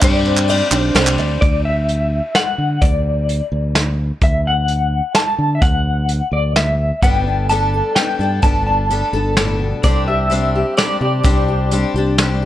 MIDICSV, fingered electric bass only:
0, 0, Header, 1, 2, 480
1, 0, Start_track
1, 0, Tempo, 468019
1, 26, Time_signature, 3, 2, 24, 8
1, 12771, End_track
2, 0, Start_track
2, 0, Title_t, "Fingered electric bass"
2, 0, Program_c, 0, 33
2, 22, Note_on_c, 0, 43, 100
2, 621, Note_off_c, 0, 43, 0
2, 729, Note_on_c, 0, 35, 86
2, 950, Note_off_c, 0, 35, 0
2, 972, Note_on_c, 0, 36, 85
2, 1191, Note_off_c, 0, 36, 0
2, 1215, Note_on_c, 0, 38, 72
2, 1432, Note_off_c, 0, 38, 0
2, 1454, Note_on_c, 0, 38, 85
2, 2254, Note_off_c, 0, 38, 0
2, 2648, Note_on_c, 0, 50, 67
2, 2851, Note_off_c, 0, 50, 0
2, 2887, Note_on_c, 0, 38, 90
2, 3489, Note_off_c, 0, 38, 0
2, 3606, Note_on_c, 0, 38, 83
2, 4209, Note_off_c, 0, 38, 0
2, 4324, Note_on_c, 0, 38, 83
2, 5128, Note_off_c, 0, 38, 0
2, 5523, Note_on_c, 0, 50, 71
2, 5726, Note_off_c, 0, 50, 0
2, 5759, Note_on_c, 0, 38, 94
2, 6365, Note_off_c, 0, 38, 0
2, 6477, Note_on_c, 0, 38, 86
2, 7084, Note_off_c, 0, 38, 0
2, 7201, Note_on_c, 0, 31, 91
2, 8007, Note_off_c, 0, 31, 0
2, 8400, Note_on_c, 0, 43, 69
2, 8606, Note_off_c, 0, 43, 0
2, 8643, Note_on_c, 0, 31, 94
2, 9249, Note_off_c, 0, 31, 0
2, 9362, Note_on_c, 0, 31, 84
2, 9969, Note_off_c, 0, 31, 0
2, 10089, Note_on_c, 0, 36, 85
2, 10895, Note_off_c, 0, 36, 0
2, 11289, Note_on_c, 0, 48, 72
2, 11494, Note_off_c, 0, 48, 0
2, 11531, Note_on_c, 0, 36, 97
2, 12136, Note_off_c, 0, 36, 0
2, 12248, Note_on_c, 0, 36, 86
2, 12771, Note_off_c, 0, 36, 0
2, 12771, End_track
0, 0, End_of_file